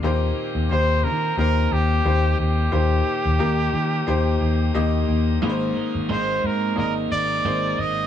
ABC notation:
X:1
M:4/4
L:1/16
Q:"Swing 16ths" 1/4=89
K:Eb
V:1 name="Trumpet"
z4 c2 B2 B2 G4 G2- | G12- G2 z2 | z4 c2 B2 B2 d4 e2 |]
V:2 name="Clean electric guitar"
z16 | z16 | [A,B,CBe]2 [B,Be]2 [A,B,CBe]4 [B,CBe]2 [B,Be]2 [A,B,CBe]2 [B,Be]2 |]
V:3 name="Upright piano"
[B,EGc]4 [B,EGc]4 [B,EGc]4 [B,EGc]4 | [B,EGc]4 [B,EGB]4 [B,EGc]4 [B,EGe]4 | [B,EA_c=c]4 [B,EAc]4 [B,EAde]4 [B,EAc]4 |]
V:4 name="Upright piano" clef=bass
B,,6 z8 z2 | B,,6 z8 z2 | [A,,E,]6 z8 z2 |]
V:5 name="Tonewheel organ"
C16 | E16 | B,16 |]
V:6 name="Tonewheel organ"
[E,B,G]16- | [E,B,G]16 | [A,C]16 |]
V:7 name="Picked electric bass" clef=bass
E,,2 z E,, E,,2 E,2 E,,2 E,,2 E,,2 E,,2 | E,,2 z E,, E,,2 E,2 E,,2 E,,2 E,,2 E,,2 | A,,,2 z A,,, A,,,2 A,,2 A,,,2 A,,,2 A,,,2 A,,,2 |]